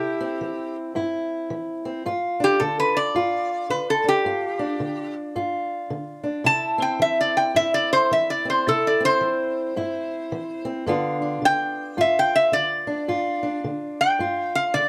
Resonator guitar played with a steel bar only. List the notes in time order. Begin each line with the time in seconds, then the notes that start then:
Already playing: G4
2.44 G4
2.60 A4
2.80 B4
2.97 D5
3.70 B4
3.90 A4
4.08 G4
6.46 A5
6.82 G5
7.02 E5
7.21 D5
7.37 G5
7.56 E5
7.74 D5
7.93 C5
8.13 E5
8.30 D5
8.50 C5
8.69 A4
8.87 D5
9.05 C5
11.45 G5
12.01 E5
12.19 G5
12.36 E5
12.53 D5
14.01 G5
14.55 F5
14.74 D5